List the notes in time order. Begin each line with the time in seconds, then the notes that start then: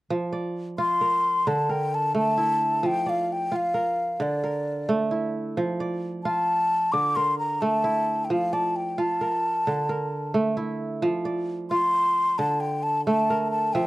0.10 F3
0.32 D5
0.78 F4 C6
1.01 A#4
1.47 D3 A5
1.69 A#4 G5
1.94 A5
2.15 A3 A5
2.38 E4
2.83 F3 G5
3.06 D5 F5
3.32 G5
3.52 F4
3.56 F5
3.74 A#4
4.20 D3 D5
4.44 A#4
4.89 A3
5.11 E4
5.57 F3
5.80 D5
6.24 F4 A5
6.92 D3 D6
7.16 A#4 C6
7.39 A#5
7.61 A3 A5
7.84 E4
8.25 G5
8.30 F3 F5
8.53 D5 A5
8.76 G5
8.98 F4 A5
9.21 A#4
9.67 D3
9.89 A#4
10.34 A3
10.57 E4
11.02 F3
11.25 D5
11.71 F4 C6
12.38 D3 A5
12.60 G5
12.83 A5
13.05 A3 A5
13.30 A#4
13.51 A5
13.73 F3 E5 G5